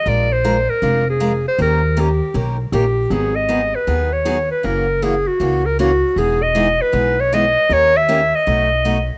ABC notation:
X:1
M:4/4
L:1/16
Q:"Swing" 1/4=157
K:G#m
V:1 name="Clarinet"
=d2 ^B4 A4 G4 B2 | A4 =G4 z4 G4 | G2 d4 B4 c4 B2 | A4 G2 F4 A2 F4 |
G2 d4 B4 c2 d4 | c2 e4 d8 z2 |]
V:2 name="Steel-string acoustic guitar"
[^E,G,=D^EA]2 z2 [E,G,DEA] z3 [E,G,DEA]2 z2 [E,G,DEA] z3 | [D,A,C=GA]2 z2 [D,A,CGA] z3 [D,A,CGA]2 z2 [D,A,CGA] z3 | [D,F,B,DG]2 z2 [D,F,B,DG] z3 [D,F,B,DG]2 z2 [D,F,B,DG] z3 | [C,E,A,CF]2 z2 [C,E,A,CF] z3 [C,E,A,CF]2 z2 [C,E,A,CF] z3 |
[E,G,B,DG]2 z2 [E,G,B,DG] z3 [E,G,B,DG]2 z2 [E,G,B,DG] z3 | [D,A,C=GA]2 z2 [D,A,CGA] z3 [B,,F,=A,DF]2 z2 [B,,F,A,DF] z3 |]
V:3 name="Upright bass" clef=bass
A,,,8 ^E,,,8 | D,,8 B,,,4 A,,,4 | G,,,8 D,,8 | F,,,8 C,,8 |
E,,,8 B,,,8 | D,,8 B,,,8 |]